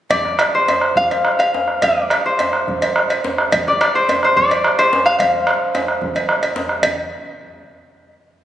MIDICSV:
0, 0, Header, 1, 5, 480
1, 0, Start_track
1, 0, Tempo, 283822
1, 174, Time_signature, 12, 3, 24, 8
1, 7852, Tempo, 273723
1, 11212, Tempo, 265369
1, 14615, End_track
2, 0, Start_track
2, 0, Title_t, "Harp"
2, 0, Program_c, 0, 46
2, 176, Note_on_c, 0, 74, 78
2, 923, Note_on_c, 0, 72, 79
2, 1637, Note_on_c, 0, 77, 96
2, 2343, Note_off_c, 0, 77, 0
2, 2350, Note_on_c, 0, 77, 86
2, 3088, Note_off_c, 0, 74, 0
2, 3095, Note_on_c, 0, 74, 75
2, 3809, Note_off_c, 0, 72, 0
2, 3816, Note_on_c, 0, 72, 65
2, 5165, Note_off_c, 0, 77, 0
2, 6212, Note_off_c, 0, 74, 0
2, 6219, Note_on_c, 0, 74, 69
2, 6440, Note_off_c, 0, 74, 0
2, 6447, Note_on_c, 0, 74, 68
2, 6676, Note_off_c, 0, 72, 0
2, 6682, Note_on_c, 0, 72, 76
2, 7169, Note_off_c, 0, 72, 0
2, 7176, Note_on_c, 0, 72, 75
2, 7378, Note_off_c, 0, 74, 0
2, 7384, Note_on_c, 0, 74, 83
2, 8097, Note_off_c, 0, 72, 0
2, 8104, Note_on_c, 0, 72, 80
2, 8577, Note_on_c, 0, 77, 105
2, 8796, Note_off_c, 0, 77, 0
2, 8803, Note_on_c, 0, 77, 85
2, 9483, Note_off_c, 0, 77, 0
2, 10606, Note_off_c, 0, 74, 0
2, 11587, Note_off_c, 0, 72, 0
2, 14615, End_track
3, 0, Start_track
3, 0, Title_t, "Bombo"
3, 175, Note_on_c, 9, 43, 85
3, 344, Note_off_c, 9, 43, 0
3, 422, Note_on_c, 9, 37, 30
3, 591, Note_off_c, 9, 37, 0
3, 655, Note_on_c, 9, 37, 91
3, 824, Note_off_c, 9, 37, 0
3, 1378, Note_on_c, 9, 37, 69
3, 1548, Note_off_c, 9, 37, 0
3, 1616, Note_on_c, 9, 43, 76
3, 1785, Note_off_c, 9, 43, 0
3, 1871, Note_on_c, 9, 37, 25
3, 2040, Note_off_c, 9, 37, 0
3, 2107, Note_on_c, 9, 37, 74
3, 2276, Note_off_c, 9, 37, 0
3, 2835, Note_on_c, 9, 37, 59
3, 3004, Note_off_c, 9, 37, 0
3, 3075, Note_on_c, 9, 43, 78
3, 3244, Note_off_c, 9, 43, 0
3, 3333, Note_on_c, 9, 37, 25
3, 3502, Note_off_c, 9, 37, 0
3, 3557, Note_on_c, 9, 37, 80
3, 3726, Note_off_c, 9, 37, 0
3, 4279, Note_on_c, 9, 37, 66
3, 4448, Note_off_c, 9, 37, 0
3, 4525, Note_on_c, 9, 43, 78
3, 4694, Note_off_c, 9, 43, 0
3, 4769, Note_on_c, 9, 37, 25
3, 4938, Note_off_c, 9, 37, 0
3, 5002, Note_on_c, 9, 37, 76
3, 5171, Note_off_c, 9, 37, 0
3, 5723, Note_on_c, 9, 37, 67
3, 5892, Note_off_c, 9, 37, 0
3, 5958, Note_on_c, 9, 43, 91
3, 6127, Note_off_c, 9, 43, 0
3, 6206, Note_on_c, 9, 37, 29
3, 6375, Note_off_c, 9, 37, 0
3, 6448, Note_on_c, 9, 37, 96
3, 6617, Note_off_c, 9, 37, 0
3, 7152, Note_on_c, 9, 37, 68
3, 7321, Note_off_c, 9, 37, 0
3, 7383, Note_on_c, 9, 43, 80
3, 7553, Note_off_c, 9, 43, 0
3, 7636, Note_on_c, 9, 37, 26
3, 7805, Note_off_c, 9, 37, 0
3, 7855, Note_on_c, 9, 37, 88
3, 8030, Note_off_c, 9, 37, 0
3, 8578, Note_on_c, 9, 37, 63
3, 8753, Note_off_c, 9, 37, 0
3, 8815, Note_on_c, 9, 43, 83
3, 8990, Note_off_c, 9, 43, 0
3, 9300, Note_on_c, 9, 37, 87
3, 9475, Note_off_c, 9, 37, 0
3, 10027, Note_on_c, 9, 37, 62
3, 10203, Note_off_c, 9, 37, 0
3, 10258, Note_on_c, 9, 43, 79
3, 10433, Note_off_c, 9, 43, 0
3, 10737, Note_on_c, 9, 37, 74
3, 10912, Note_off_c, 9, 37, 0
3, 11219, Note_on_c, 9, 37, 21
3, 11400, Note_off_c, 9, 37, 0
3, 11454, Note_on_c, 9, 37, 54
3, 11635, Note_off_c, 9, 37, 0
3, 11687, Note_on_c, 9, 43, 71
3, 11868, Note_off_c, 9, 43, 0
3, 14615, End_track
4, 0, Start_track
4, 0, Title_t, "Djembe"
4, 176, Note_on_c, 9, 64, 68
4, 345, Note_off_c, 9, 64, 0
4, 430, Note_on_c, 9, 62, 21
4, 430, Note_on_c, 9, 63, 55
4, 599, Note_off_c, 9, 62, 0
4, 599, Note_off_c, 9, 63, 0
4, 1155, Note_on_c, 9, 62, 63
4, 1155, Note_on_c, 9, 63, 59
4, 1324, Note_off_c, 9, 62, 0
4, 1324, Note_off_c, 9, 63, 0
4, 1397, Note_on_c, 9, 62, 20
4, 1566, Note_off_c, 9, 62, 0
4, 1643, Note_on_c, 9, 64, 61
4, 1812, Note_off_c, 9, 64, 0
4, 1890, Note_on_c, 9, 63, 50
4, 2059, Note_off_c, 9, 63, 0
4, 2611, Note_on_c, 9, 62, 65
4, 2611, Note_on_c, 9, 63, 61
4, 2780, Note_off_c, 9, 62, 0
4, 2780, Note_off_c, 9, 63, 0
4, 3090, Note_on_c, 9, 64, 57
4, 3259, Note_off_c, 9, 64, 0
4, 3327, Note_on_c, 9, 62, 20
4, 3327, Note_on_c, 9, 63, 47
4, 3496, Note_off_c, 9, 62, 0
4, 3496, Note_off_c, 9, 63, 0
4, 4059, Note_on_c, 9, 62, 58
4, 4059, Note_on_c, 9, 63, 60
4, 4228, Note_off_c, 9, 62, 0
4, 4228, Note_off_c, 9, 63, 0
4, 4299, Note_on_c, 9, 62, 18
4, 4468, Note_off_c, 9, 62, 0
4, 4535, Note_on_c, 9, 64, 59
4, 4704, Note_off_c, 9, 64, 0
4, 4782, Note_on_c, 9, 63, 51
4, 4951, Note_off_c, 9, 63, 0
4, 5487, Note_on_c, 9, 62, 64
4, 5487, Note_on_c, 9, 63, 64
4, 5656, Note_off_c, 9, 62, 0
4, 5656, Note_off_c, 9, 63, 0
4, 5964, Note_on_c, 9, 64, 66
4, 6133, Note_off_c, 9, 64, 0
4, 6208, Note_on_c, 9, 62, 21
4, 6208, Note_on_c, 9, 63, 52
4, 6377, Note_off_c, 9, 62, 0
4, 6377, Note_off_c, 9, 63, 0
4, 6914, Note_on_c, 9, 62, 65
4, 6914, Note_on_c, 9, 63, 65
4, 7083, Note_off_c, 9, 62, 0
4, 7083, Note_off_c, 9, 63, 0
4, 7162, Note_on_c, 9, 62, 21
4, 7331, Note_off_c, 9, 62, 0
4, 7389, Note_on_c, 9, 64, 66
4, 7558, Note_off_c, 9, 64, 0
4, 8352, Note_on_c, 9, 62, 67
4, 8352, Note_on_c, 9, 63, 67
4, 8527, Note_off_c, 9, 62, 0
4, 8527, Note_off_c, 9, 63, 0
4, 8835, Note_on_c, 9, 62, 20
4, 8835, Note_on_c, 9, 64, 70
4, 9011, Note_off_c, 9, 62, 0
4, 9011, Note_off_c, 9, 64, 0
4, 9065, Note_on_c, 9, 63, 59
4, 9241, Note_off_c, 9, 63, 0
4, 9787, Note_on_c, 9, 62, 69
4, 9787, Note_on_c, 9, 63, 65
4, 9962, Note_off_c, 9, 62, 0
4, 9962, Note_off_c, 9, 63, 0
4, 10261, Note_on_c, 9, 64, 62
4, 10437, Note_off_c, 9, 64, 0
4, 10498, Note_on_c, 9, 63, 51
4, 10673, Note_off_c, 9, 63, 0
4, 10971, Note_on_c, 9, 62, 23
4, 11147, Note_off_c, 9, 62, 0
4, 11213, Note_on_c, 9, 62, 72
4, 11213, Note_on_c, 9, 63, 66
4, 11394, Note_off_c, 9, 62, 0
4, 11394, Note_off_c, 9, 63, 0
4, 11708, Note_on_c, 9, 64, 72
4, 11889, Note_off_c, 9, 64, 0
4, 14615, End_track
5, 0, Start_track
5, 0, Title_t, "Drums"
5, 179, Note_on_c, 9, 56, 59
5, 348, Note_off_c, 9, 56, 0
5, 664, Note_on_c, 9, 56, 50
5, 833, Note_off_c, 9, 56, 0
5, 1157, Note_on_c, 9, 56, 45
5, 1327, Note_off_c, 9, 56, 0
5, 1882, Note_on_c, 9, 56, 43
5, 2051, Note_off_c, 9, 56, 0
5, 2364, Note_on_c, 9, 56, 46
5, 2533, Note_off_c, 9, 56, 0
5, 3081, Note_on_c, 9, 56, 59
5, 3250, Note_off_c, 9, 56, 0
5, 3568, Note_on_c, 9, 56, 48
5, 3737, Note_off_c, 9, 56, 0
5, 4042, Note_on_c, 9, 56, 45
5, 4211, Note_off_c, 9, 56, 0
5, 4772, Note_on_c, 9, 56, 46
5, 4941, Note_off_c, 9, 56, 0
5, 5247, Note_on_c, 9, 56, 44
5, 5416, Note_off_c, 9, 56, 0
5, 5960, Note_on_c, 9, 56, 56
5, 6129, Note_off_c, 9, 56, 0
5, 6441, Note_on_c, 9, 56, 47
5, 6610, Note_off_c, 9, 56, 0
5, 6922, Note_on_c, 9, 56, 47
5, 7091, Note_off_c, 9, 56, 0
5, 7632, Note_on_c, 9, 56, 43
5, 7801, Note_off_c, 9, 56, 0
5, 8106, Note_on_c, 9, 56, 46
5, 8282, Note_off_c, 9, 56, 0
5, 8829, Note_on_c, 9, 56, 58
5, 9005, Note_off_c, 9, 56, 0
5, 9790, Note_on_c, 9, 56, 43
5, 9966, Note_off_c, 9, 56, 0
5, 10510, Note_on_c, 9, 56, 42
5, 10685, Note_off_c, 9, 56, 0
5, 10982, Note_on_c, 9, 56, 40
5, 11157, Note_off_c, 9, 56, 0
5, 11702, Note_on_c, 9, 56, 69
5, 11883, Note_off_c, 9, 56, 0
5, 14615, End_track
0, 0, End_of_file